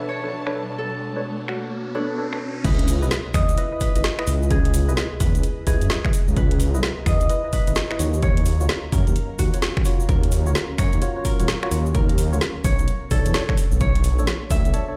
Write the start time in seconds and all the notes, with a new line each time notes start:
Already playing: B2 B3 D4 F#4 A4 C#5 E5 A5, riser
0.00 D4 A4 B4 C#5
0.09 C#5
0.23 D4 A4 B4 C#5
0.47 D4 A4 B4 C#5, finger snap
0.55 D4 A4 B4 C#5
0.78 A4
1.16 D4 A4 B4 C#5
1.48 F#4, finger snap
1.95 D4 A4 B4 C#5
2.18 D4 A4 B4 C#5
2.33 D4 A4 B4 C#5, finger snap
2.64 C#2 E4 G#4 B4 D#5, kick, closed hi-hat, crash, cabasa
2.79 closed hi-hat
2.88 open hi-hat, cabasa
3.02 B1 E4 B4 D#5, cabasa
3.11 snare, closed hi-hat, cabasa
3.34 E2 D#5, finger snap, kick, open hi-hat, cabasa
3.49 C#2, closed hi-hat, cabasa
3.57 E4 B4 D#5, closed hi-hat, cabasa
3.72 E4 B4 D#5
3.80 B4, kick, open hi-hat, cabasa
3.95 G#1 E4 B4 D#5, closed hi-hat, cabasa
4.04 snare, closed hi-hat, cabasa
4.19 E4 B4 D#5, finger snap
4.27 C#2 E4 B4 D#5, open hi-hat, cabasa
4.43 cabasa
4.51 G#4, kick, closed hi-hat, cabasa
4.65 closed hi-hat
4.74 open hi-hat, cabasa
4.89 B1 E4 B4 D#5, cabasa
4.97 snare, closed hi-hat, cabasa
5.20 E2 B4, kick, open hi-hat, cabasa
5.35 C#2, closed hi-hat, cabasa
5.43 A#5, closed hi-hat, cabasa
5.67 C#2 E4 G#4 B4 D#5, kick, open hi-hat, cabasa
5.81 F#2, closed hi-hat, cabasa
5.90 E4 B4 D#5, snare, open hi-hat, cabasa
6.05 E4 B4 D#5, finger snap, kick
6.13 open hi-hat, cabasa
6.28 C#2, cabasa
6.37 C#2 B4, kick, closed hi-hat, cabasa
6.51 closed hi-hat
6.60 open hi-hat, cabasa
6.74 B1 E4 B4 D#5, cabasa
6.83 snare, closed hi-hat, cabasa
7.06 E2 D#5, finger snap, kick, open hi-hat, cabasa
7.21 C#2, closed hi-hat, cabasa
7.30 E4 B4 D#5, closed hi-hat, cabasa
7.44 E4 B4 D#5
7.53 B4, kick, open hi-hat, cabasa
7.67 G#1 E4 B4 D#5, closed hi-hat, cabasa
7.75 snare, closed hi-hat, cabasa
7.91 E4 B4 D#5, finger snap
7.99 D#2 F#3 C#4 F4 F#4 C#5 F5, open hi-hat, cabasa
8.14 cabasa
8.22 C#5, kick, closed hi-hat, cabasa
8.37 closed hi-hat
8.45 open hi-hat, cabasa
8.60 C#2 F4 F#4 C#5, cabasa
8.69 snare, closed hi-hat, cabasa
8.92 F#2 A#4, kick, open hi-hat, cabasa
9.07 D#2, closed hi-hat, cabasa
9.16 closed hi-hat, cabasa
9.39 D#2 F#4, kick, open hi-hat, cabasa
9.54 F4 F#4 C#5, closed hi-hat, cabasa
9.62 snare, open hi-hat, cabasa
9.77 finger snap, kick
9.85 F4 F#4 C#5, open hi-hat, cabasa
10.00 cabasa
10.09 D#2 A#4, kick, closed hi-hat, cabasa
10.23 closed hi-hat
10.32 open hi-hat, cabasa
10.47 C#2 F4 F#4 C#5, cabasa
10.55 snare, closed hi-hat, cabasa
10.78 F#2 C#5, finger snap, kick, open hi-hat, cabasa
10.93 D#2, closed hi-hat, cabasa
11.02 F4 F#4 C#5, closed hi-hat, cabasa
11.16 F4 F#4 C#5
11.25 A#4, kick, open hi-hat, cabasa
11.40 D#1 F4 F#4 C#5, closed hi-hat, cabasa
11.48 snare, closed hi-hat, cabasa
11.63 F4 F#4 C#5, finger snap
11.71 D#2 F4 F#4 C#5, open hi-hat, cabasa
11.86 cabasa
11.94 A#4, kick, closed hi-hat, cabasa
12.09 closed hi-hat
12.18 open hi-hat, cabasa
12.33 C#2 F4 F#4 C#5, cabasa
12.41 snare, closed hi-hat, cabasa
12.64 B1 D4 A4 C#5, kick, open hi-hat, cabasa
12.79 B1, closed hi-hat, cabasa
12.88 closed hi-hat, cabasa
13.11 B1 D4 A4 C#5, kick, open hi-hat, cabasa
13.25 E2, closed hi-hat, cabasa
13.34 D4 A4 C#5, snare, open hi-hat, cabasa
13.49 D4 A4 C#5, finger snap, kick
13.57 open hi-hat, cabasa
13.72 B1, cabasa
13.80 B1 C#5, kick, closed hi-hat, cabasa
13.95 closed hi-hat
14.04 open hi-hat, cabasa
14.19 A1 D4 A4 C#5, cabasa
14.27 snare, closed hi-hat, cabasa
14.50 D2 E5, kick, open hi-hat, cabasa
14.65 B1, closed hi-hat, cabasa
14.74 D4 A4 C#5, closed hi-hat, cabasa
14.88 D4 A4 C#5